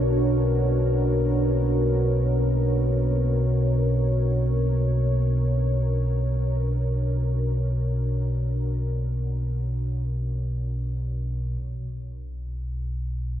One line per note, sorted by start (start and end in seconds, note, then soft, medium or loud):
0.00 11.57 B1 medium
0.00 11.57 B2 medium
0.00 11.62 D4 medium
0.00 11.63 F#4 medium
0.00 11.62 A#4 medium
0.00 11.63 C#5 medium
11.58 13.40 B1 medium
11.58 13.40 B2 medium